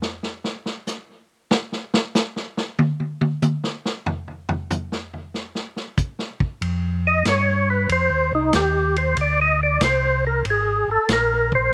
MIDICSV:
0, 0, Header, 1, 4, 480
1, 0, Start_track
1, 0, Tempo, 638298
1, 1136, Time_signature, 4, 2, 24, 8
1, 8825, End_track
2, 0, Start_track
2, 0, Title_t, "Tonewheel organ"
2, 0, Program_c, 0, 16
2, 5318, Note_on_c, 0, 75, 101
2, 5460, Note_off_c, 0, 75, 0
2, 5479, Note_on_c, 0, 73, 94
2, 5784, Note_off_c, 0, 73, 0
2, 5791, Note_on_c, 0, 71, 98
2, 5937, Note_off_c, 0, 71, 0
2, 5957, Note_on_c, 0, 72, 97
2, 6263, Note_off_c, 0, 72, 0
2, 6279, Note_on_c, 0, 63, 69
2, 6421, Note_off_c, 0, 63, 0
2, 6435, Note_on_c, 0, 67, 86
2, 6742, Note_off_c, 0, 67, 0
2, 6751, Note_on_c, 0, 72, 86
2, 6897, Note_off_c, 0, 72, 0
2, 6926, Note_on_c, 0, 74, 91
2, 7068, Note_off_c, 0, 74, 0
2, 7079, Note_on_c, 0, 75, 105
2, 7224, Note_off_c, 0, 75, 0
2, 7242, Note_on_c, 0, 74, 85
2, 7386, Note_off_c, 0, 74, 0
2, 7400, Note_on_c, 0, 72, 89
2, 7705, Note_off_c, 0, 72, 0
2, 7721, Note_on_c, 0, 70, 87
2, 7862, Note_off_c, 0, 70, 0
2, 7898, Note_on_c, 0, 68, 85
2, 8194, Note_off_c, 0, 68, 0
2, 8206, Note_on_c, 0, 69, 96
2, 8345, Note_off_c, 0, 69, 0
2, 8369, Note_on_c, 0, 70, 93
2, 8670, Note_off_c, 0, 70, 0
2, 8685, Note_on_c, 0, 72, 96
2, 8825, Note_off_c, 0, 72, 0
2, 8825, End_track
3, 0, Start_track
3, 0, Title_t, "Tonewheel organ"
3, 0, Program_c, 1, 16
3, 4973, Note_on_c, 1, 41, 81
3, 5441, Note_off_c, 1, 41, 0
3, 5455, Note_on_c, 1, 43, 90
3, 5922, Note_off_c, 1, 43, 0
3, 5933, Note_on_c, 1, 41, 77
3, 6090, Note_off_c, 1, 41, 0
3, 6094, Note_on_c, 1, 39, 58
3, 6256, Note_off_c, 1, 39, 0
3, 6256, Note_on_c, 1, 36, 61
3, 6405, Note_off_c, 1, 36, 0
3, 6414, Note_on_c, 1, 39, 80
3, 6882, Note_off_c, 1, 39, 0
3, 6894, Note_on_c, 1, 38, 88
3, 7361, Note_off_c, 1, 38, 0
3, 7374, Note_on_c, 1, 36, 92
3, 7841, Note_off_c, 1, 36, 0
3, 7857, Note_on_c, 1, 32, 78
3, 8160, Note_off_c, 1, 32, 0
3, 8181, Note_on_c, 1, 32, 40
3, 8259, Note_off_c, 1, 32, 0
3, 8338, Note_on_c, 1, 34, 89
3, 8804, Note_off_c, 1, 34, 0
3, 8825, End_track
4, 0, Start_track
4, 0, Title_t, "Drums"
4, 15, Note_on_c, 9, 38, 47
4, 90, Note_off_c, 9, 38, 0
4, 173, Note_on_c, 9, 38, 39
4, 248, Note_off_c, 9, 38, 0
4, 333, Note_on_c, 9, 38, 45
4, 408, Note_off_c, 9, 38, 0
4, 494, Note_on_c, 9, 38, 39
4, 569, Note_off_c, 9, 38, 0
4, 652, Note_on_c, 9, 44, 58
4, 654, Note_on_c, 9, 38, 35
4, 727, Note_off_c, 9, 44, 0
4, 729, Note_off_c, 9, 38, 0
4, 1135, Note_on_c, 9, 38, 87
4, 1210, Note_off_c, 9, 38, 0
4, 1295, Note_on_c, 9, 38, 40
4, 1371, Note_off_c, 9, 38, 0
4, 1457, Note_on_c, 9, 38, 96
4, 1532, Note_off_c, 9, 38, 0
4, 1615, Note_on_c, 9, 44, 54
4, 1617, Note_on_c, 9, 38, 95
4, 1690, Note_off_c, 9, 44, 0
4, 1693, Note_off_c, 9, 38, 0
4, 1777, Note_on_c, 9, 38, 39
4, 1852, Note_off_c, 9, 38, 0
4, 1935, Note_on_c, 9, 38, 52
4, 2011, Note_off_c, 9, 38, 0
4, 2096, Note_on_c, 9, 48, 98
4, 2171, Note_off_c, 9, 48, 0
4, 2255, Note_on_c, 9, 48, 42
4, 2330, Note_off_c, 9, 48, 0
4, 2415, Note_on_c, 9, 48, 84
4, 2490, Note_off_c, 9, 48, 0
4, 2572, Note_on_c, 9, 44, 54
4, 2574, Note_on_c, 9, 48, 91
4, 2647, Note_off_c, 9, 44, 0
4, 2649, Note_off_c, 9, 48, 0
4, 2735, Note_on_c, 9, 38, 49
4, 2810, Note_off_c, 9, 38, 0
4, 2898, Note_on_c, 9, 38, 52
4, 2974, Note_off_c, 9, 38, 0
4, 3055, Note_on_c, 9, 43, 95
4, 3130, Note_off_c, 9, 43, 0
4, 3216, Note_on_c, 9, 43, 35
4, 3291, Note_off_c, 9, 43, 0
4, 3375, Note_on_c, 9, 43, 103
4, 3450, Note_off_c, 9, 43, 0
4, 3536, Note_on_c, 9, 44, 53
4, 3538, Note_on_c, 9, 43, 96
4, 3611, Note_off_c, 9, 44, 0
4, 3614, Note_off_c, 9, 43, 0
4, 3700, Note_on_c, 9, 38, 44
4, 3775, Note_off_c, 9, 38, 0
4, 3861, Note_on_c, 9, 43, 38
4, 3936, Note_off_c, 9, 43, 0
4, 4018, Note_on_c, 9, 38, 37
4, 4093, Note_off_c, 9, 38, 0
4, 4175, Note_on_c, 9, 38, 41
4, 4250, Note_off_c, 9, 38, 0
4, 4335, Note_on_c, 9, 38, 31
4, 4410, Note_off_c, 9, 38, 0
4, 4491, Note_on_c, 9, 44, 57
4, 4495, Note_on_c, 9, 36, 75
4, 4566, Note_off_c, 9, 44, 0
4, 4570, Note_off_c, 9, 36, 0
4, 4654, Note_on_c, 9, 38, 38
4, 4729, Note_off_c, 9, 38, 0
4, 4815, Note_on_c, 9, 36, 73
4, 4891, Note_off_c, 9, 36, 0
4, 4976, Note_on_c, 9, 36, 20
4, 4977, Note_on_c, 9, 51, 56
4, 5051, Note_off_c, 9, 36, 0
4, 5052, Note_off_c, 9, 51, 0
4, 5454, Note_on_c, 9, 44, 66
4, 5454, Note_on_c, 9, 51, 64
4, 5456, Note_on_c, 9, 36, 20
4, 5456, Note_on_c, 9, 38, 70
4, 5529, Note_off_c, 9, 44, 0
4, 5529, Note_off_c, 9, 51, 0
4, 5531, Note_off_c, 9, 36, 0
4, 5531, Note_off_c, 9, 38, 0
4, 5936, Note_on_c, 9, 36, 26
4, 5936, Note_on_c, 9, 51, 62
4, 6011, Note_off_c, 9, 36, 0
4, 6011, Note_off_c, 9, 51, 0
4, 6413, Note_on_c, 9, 44, 49
4, 6413, Note_on_c, 9, 51, 68
4, 6416, Note_on_c, 9, 36, 23
4, 6416, Note_on_c, 9, 38, 71
4, 6488, Note_off_c, 9, 44, 0
4, 6488, Note_off_c, 9, 51, 0
4, 6491, Note_off_c, 9, 36, 0
4, 6491, Note_off_c, 9, 38, 0
4, 6740, Note_on_c, 9, 51, 48
4, 6816, Note_off_c, 9, 51, 0
4, 6892, Note_on_c, 9, 51, 59
4, 6897, Note_on_c, 9, 36, 23
4, 6968, Note_off_c, 9, 51, 0
4, 6972, Note_off_c, 9, 36, 0
4, 7375, Note_on_c, 9, 44, 47
4, 7375, Note_on_c, 9, 51, 76
4, 7377, Note_on_c, 9, 38, 66
4, 7378, Note_on_c, 9, 36, 24
4, 7450, Note_off_c, 9, 44, 0
4, 7450, Note_off_c, 9, 51, 0
4, 7452, Note_off_c, 9, 38, 0
4, 7453, Note_off_c, 9, 36, 0
4, 7857, Note_on_c, 9, 51, 58
4, 7858, Note_on_c, 9, 36, 20
4, 7932, Note_off_c, 9, 51, 0
4, 7934, Note_off_c, 9, 36, 0
4, 8337, Note_on_c, 9, 44, 52
4, 8337, Note_on_c, 9, 51, 69
4, 8339, Note_on_c, 9, 36, 21
4, 8339, Note_on_c, 9, 38, 68
4, 8412, Note_off_c, 9, 44, 0
4, 8412, Note_off_c, 9, 51, 0
4, 8414, Note_off_c, 9, 36, 0
4, 8415, Note_off_c, 9, 38, 0
4, 8663, Note_on_c, 9, 36, 57
4, 8738, Note_off_c, 9, 36, 0
4, 8825, End_track
0, 0, End_of_file